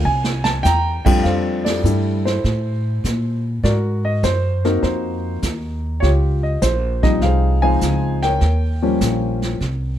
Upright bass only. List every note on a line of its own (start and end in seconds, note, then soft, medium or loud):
0.05 0.63 C2 medium
0.65 1.03 E2 medium
1.25 1.82 F2 medium
1.84 2.42 G2 medium
2.44 3.02 A2 medium
3.04 3.62 A#2 medium
3.63 4.21 G#2 medium
4.23 4.81 F#2 medium
4.83 5.41 F2 medium
5.43 6.01 D#2 medium
6.02 6.60 C#2 medium
6.62 7.20 A#1 medium
7.22 7.80 C2 medium
7.81 8.39 C#2 medium
8.41 8.99 D#2 medium
9.01 9.59 A#1 medium
9.60 9.99 C2 medium